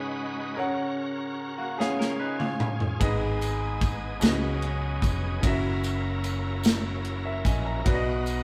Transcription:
0.00 0.54 C#3 medium
0.00 0.58 G#3 medium
0.00 0.56 C#4 medium
0.00 0.57 D#4 medium
0.00 0.58 D#4 medium
0.00 0.56 F#4 medium
0.00 0.58 G#4 medium
0.00 0.58 B4 loud
0.00 0.58 B4 medium
0.00 0.57 C#5 medium
0.00 0.58 F#5 medium
0.56 1.75 C#3 medium
0.56 1.78 C#4 medium
0.56 1.79 F#4 medium
0.56 0.64 A4 medium
0.56 1.78 A#4 medium
0.56 1.78 C#5 medium
0.56 1.80 F#5 medium
0.65 1.83 A#4 medium
1.58 1.78 A#3 medium
1.58 1.78 F#4 medium
1.78 2.97 C#3 medium
1.78 1.99 B3 medium
1.78 3.00 C#4 medium
1.78 3.01 F4 medium
1.78 2.98 G#4 medium
1.78 2.99 G#4 medium
1.78 1.99 G#4 medium
1.78 3.01 C#5 medium
1.78 3.02 F5 medium
1.78 snare medium
1.99 2.19 C#4 medium
1.99 2.18 A#4 medium
1.99 snare medium
2.20 2.39 D#4 medium
2.20 2.39 B4 medium
2.39 2.98 F4 medium
2.39 2.97 C#5 medium
2.39 mid tom medium
2.60 mid tom loud
2.80 floor tom medium
3.00 4.18 G#1 loud
3.00 4.18 G#2 medium
3.00 4.21 B3 medium
3.00 4.21 D#4 medium
3.00 4.20 G#4 medium
3.00 4.22 G#4 medium
3.00 4.21 B4 medium
3.00 4.22 D#5 medium
3.00 kick loud
3.00 ride bell medium
3.41 ride bell soft
3.41 tambourine medium
3.81 kick medium
3.81 ride bell soft
3.81 tambourine soft
4.20 4.99 C#2 loud
4.20 5.39 C#3 medium
4.20 5.43 F#3 medium
4.20 5.43 B3 medium
4.20 5.39 C#4 medium
4.20 5.43 C#4 medium
4.20 5.43 D#4 medium
4.20 5.42 F#4 medium
4.20 4.28 F#4 medium
4.20 5.43 G#4 medium
4.20 5.44 B4 medium
4.20 5.44 D#5 medium
4.20 snare loud
4.20 ride bell medium
4.20 tambourine medium
4.29 5.43 G#4 medium
4.62 ride bell soft
5.02 5.40 F1 medium
5.02 kick loud
5.02 ride bell soft
5.02 tambourine medium
5.41 7.42 F#1 loud
5.41 7.83 F#3 medium
5.41 7.82 A#3 medium
5.41 7.81 C#4 medium
5.41 7.83 C#4 medium
5.41 7.82 E4 medium
5.41 7.83 E4 medium
5.41 7.82 F#4 medium
5.41 5.50 G#4 medium
5.41 kick loud
5.41 ride bell medium
5.45 6.63 A#4 medium
5.45 6.64 E5 medium
5.51 7.86 A#4 medium
5.83 ride bell soft
5.83 tambourine medium
6.24 ride bell medium
6.24 tambourine soft
6.63 snare loud
6.63 ride bell medium
6.63 tambourine medium
7.05 ride bell soft
7.25 7.45 A#4 medium
7.25 7.45 E5 medium
7.45 7.82 A#1 medium
7.45 7.65 D#5 medium
7.45 7.65 G#5 medium
7.45 kick loud
7.45 ride bell soft
7.45 tambourine medium
7.66 8.05 E5 medium
7.66 8.04 A#5 medium
7.85 8.43 B1 loud
7.85 8.43 B2 medium
7.85 8.43 B3 medium
7.85 8.43 D#4 medium
7.85 8.43 F#4 medium
7.85 8.43 B4 medium
7.85 7.93 D5 medium
7.85 kick loud
7.85 ride bell medium
7.94 8.43 D#5 medium
8.26 ride bell soft
8.26 tambourine medium

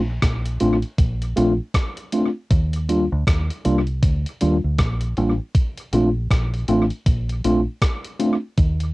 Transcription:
0.00 0.21 A#1 medium
0.22 0.59 A#1 medium
0.22 kick medium
0.22 cross-stick medium
0.22 closed hi-hat medium
0.46 closed hi-hat medium
0.60 0.82 A1 medium
0.60 0.76 A3 medium
0.60 0.76 C4 medium
0.60 0.76 D4 medium
0.60 0.76 F4 medium
0.60 closed hi-hat medium
0.82 closed hi-hat soft
0.98 1.35 A#1 medium
0.98 kick loud
0.98 closed hi-hat medium
1.22 closed hi-hat soft
1.36 1.58 A#1 medium
1.36 1.52 A3 medium
1.36 1.52 C4 medium
1.36 1.52 D4 medium
1.36 1.52 F4 loud
1.36 closed hi-hat medium
1.74 kick medium
1.74 cross-stick medium
1.74 closed hi-hat medium
1.97 closed hi-hat soft
2.12 2.28 A3 medium
2.12 2.28 C4 medium
2.12 2.28 D4 medium
2.12 2.28 F4 medium
2.12 closed hi-hat medium
2.51 3.08 D#2 loud
2.51 kick loud
2.51 closed hi-hat medium
2.73 closed hi-hat soft
2.89 3.04 G3 medium
2.89 3.04 A#3 medium
2.89 3.04 D4 medium
2.89 3.04 F4 medium
2.89 closed hi-hat medium
3.12 3.26 D2 medium
3.27 3.48 D#2 medium
3.27 kick loud
3.27 cross-stick loud
3.27 closed hi-hat medium
3.50 closed hi-hat medium
3.65 4.01 C2 medium
3.65 3.80 G3 medium
3.65 3.80 A#3 medium
3.65 3.80 D4 medium
3.65 3.80 F4 loud
3.65 closed hi-hat medium
3.87 closed hi-hat soft
4.03 4.24 D2 medium
4.03 kick loud
4.03 closed hi-hat medium
4.26 closed hi-hat soft
4.41 4.62 D#2 medium
4.41 4.56 G3 medium
4.41 4.56 A#3 medium
4.41 4.56 D4 medium
4.41 4.56 F4 medium
4.41 closed hi-hat medium
4.64 4.78 D2 medium
4.78 5.15 A#1 medium
4.78 kick medium
4.78 cross-stick medium
4.78 closed hi-hat medium
5.00 closed hi-hat soft
5.17 5.38 A1 medium
5.17 5.32 G3 medium
5.17 5.32 A#3 medium
5.17 5.32 D4 medium
5.17 5.32 F4 medium
5.17 closed hi-hat medium
5.55 kick loud
5.55 closed hi-hat medium
5.77 closed hi-hat soft
5.93 6.29 A#1 loud
5.93 6.08 A3 medium
5.93 6.08 C4 medium
5.93 6.08 D4 medium
5.93 6.08 F4 medium
5.93 closed hi-hat medium
6.31 6.67 A#1 medium
6.31 kick medium
6.31 cross-stick medium
6.31 closed hi-hat medium
6.54 closed hi-hat medium
6.68 6.90 A1 medium
6.68 6.84 A3 medium
6.68 6.84 C4 medium
6.68 6.84 D4 medium
6.68 6.84 F4 loud
6.68 closed hi-hat medium
6.90 closed hi-hat soft
7.06 7.43 A#1 medium
7.06 kick loud
7.06 closed hi-hat loud
7.29 closed hi-hat soft
7.44 7.65 A#1 medium
7.44 7.60 A3 medium
7.44 7.60 C4 medium
7.44 7.60 D4 medium
7.44 7.60 F4 loud
7.44 closed hi-hat medium
7.82 kick medium
7.82 cross-stick medium
7.82 closed hi-hat medium
8.05 closed hi-hat soft
8.20 8.35 A3 medium
8.20 8.35 C4 medium
8.20 8.36 D4 medium
8.20 8.35 F4 medium
8.20 closed hi-hat medium
8.58 8.94 D#2 loud
8.58 kick loud
8.58 closed hi-hat medium
8.80 closed hi-hat soft

